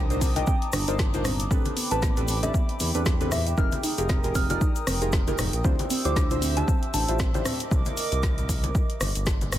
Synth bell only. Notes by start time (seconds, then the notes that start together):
0.36 G5
0.47 G5
1.91 A5
2.43 E5
3.32 E5
3.47 E5
3.58 F6
4.35 F6
4.50 F6
6.05 D6
6.57 A5
6.94 A5